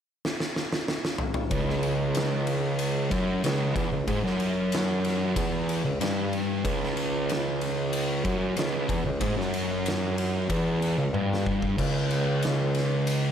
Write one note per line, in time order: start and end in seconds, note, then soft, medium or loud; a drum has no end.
0.25 snare medium
0.40 snare medium
0.56 snare medium
0.72 snare medium
0.88 snare medium
1.05 snare medium
1.18 mid tom medium
1.34 mid tom loud
1.51 3.10 C#2 loud
1.51 3.08 C#2 loud
1.51 kick loud
1.51 ride loud
1.69 snare soft
1.83 ride medium
2.15 snare loud
2.15 ride loud
2.47 ride medium
2.79 ride loud
3.11 3.42 F#2 loud
3.11 3.41 F#2 loud
3.11 kick medium
3.11 ride medium
3.44 3.75 C#2 loud
3.44 3.74 C#2 loud
3.44 snare loud
3.44 ride loud
3.75 3.91 E2 loud
3.75 kick loud
3.75 ride medium
3.92 4.07 C#2 medium
3.92 4.08 C#2 medium
4.08 4.23 G#2 medium
4.08 4.23 G#2 loud
4.08 kick loud
4.08 ride medium
4.24 5.35 F#2 loud
4.24 5.32 F#2 loud
4.24 snare soft
4.40 ride medium
4.72 snare loud
4.72 ride loud
5.05 snare soft
5.05 ride medium
5.36 5.81 E2 medium
5.36 5.83 E2 loud
5.36 kick loud
5.36 ride loud
5.69 ride medium
5.84 6.00 C#2 medium
6.01 6.64 G2 loud
6.01 6.35 G2 loud
6.01 snare loud
6.01 ride loud
6.33 ride medium
6.65 8.21 C#2 loud
6.65 8.24 C#2 loud
6.65 kick loud
6.65 ride medium
6.84 snare soft
6.97 ride medium
7.29 snare loud
7.29 ride medium
7.61 ride medium
7.93 ride loud
8.24 8.56 F#2 loud
8.24 8.55 F#2 medium
8.24 kick loud
8.24 ride medium
8.57 8.87 C#2 medium
8.57 8.88 C#2 loud
8.57 snare loud
8.57 ride loud
8.89 9.04 E2 loud
8.89 kick loud
8.89 ride medium
9.05 9.20 C#2 medium
9.20 9.36 G#2 loud
9.20 9.36 G#2 medium
9.20 kick loud
9.20 ride loud
9.37 10.48 F#2 loud
9.37 10.46 F#2 loud
9.41 snare soft
9.54 ride medium
9.86 snare loud
9.86 ride medium
10.18 ride medium
10.49 10.97 E2 loud
10.49 10.95 E2 medium
10.49 kick loud
10.49 ride medium
10.82 ride medium
10.98 11.13 C#2 medium
11.13 11.48 G2 medium
11.13 11.77 G2 loud
11.13 high tom medium
11.33 snare medium
11.46 kick loud
11.62 kick medium
11.77 13.32 C#2 loud
11.77 kick loud
11.77 crash loud
12.11 ride medium
12.43 snare loud
12.43 ride medium
12.75 snare soft
12.75 ride medium
13.07 ride loud